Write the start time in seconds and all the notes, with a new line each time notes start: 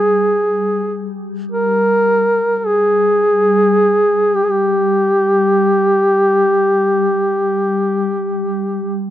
Already playing: G3 G#4
1.52 A#4
2.58 A#4
2.66 G#4
4.35 G4
4.44 G#4
4.51 G4